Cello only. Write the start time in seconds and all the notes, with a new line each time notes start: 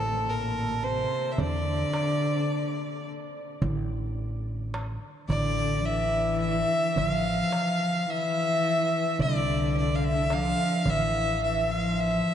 Already playing: A2
0.27 A#2
0.82 C3
1.39 D3
5.30 D3
5.79 F3
5.86 E3
6.98 F3
8.09 E3
9.21 D3
10.32 F3
10.88 E3
11.43 E3
11.70 F3